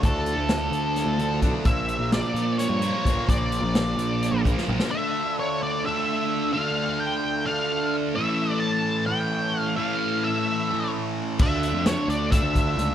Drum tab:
CC |--------------|--------------|--------------|--------------|
HH |x-x-x-x-x-x-x-|x-x-x-x-x-x-x-|x-x-x-x-x-x---|--------------|
SD |----o---o-----|----o---o-----|----o------o-o|--------------|
T2 |--------------|--------------|------------o-|--------------|
BD |o-----------o-|o-----------o-|o---------o---|--------------|

CC |--------------|--------------|--------------|x-------------|
HH |--------------|--------------|--------------|--x-x-x-x-x-x-|
SD |--------------|--------------|--------------|----o-------o-|
T2 |--------------|--------------|--------------|--------------|
BD |--------------|--------------|--------------|o-------o-o---|